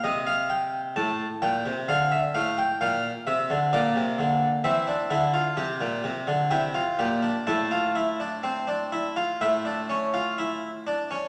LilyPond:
<<
  \new Staff \with { instrumentName = "Harpsichord" } { \time 4/4 \key a \phrygian \tempo 4 = 64 << { ees''16 f''16 g''8 a''8 g''8 f''16 e''16 f''16 g''16 f''8 e''8 | d''4 e''2 g''4 | a''2 e''4. r8 | } \\ { r1 | bes4 c'16 d'16 e'16 f'16 g'4 e'16 f'16 g'16 d'16 | e'16 f'16 e'16 d'16 c'16 d'16 e'16 f'16 e'16 d'16 cis'16 f'16 e'8 d'16 cis'16 | } >> }
  \new Staff \with { instrumentName = "Harpsichord" } { \clef bass \time 4/4 \key a \phrygian c4 a,8 bes,16 c16 d8 a,8 bes,8 c16 d16 | bes,16 c16 d8 e8 d8 c16 bes,16 c16 d16 c8 bes,8 | a,2 a,4. r8 | }
>>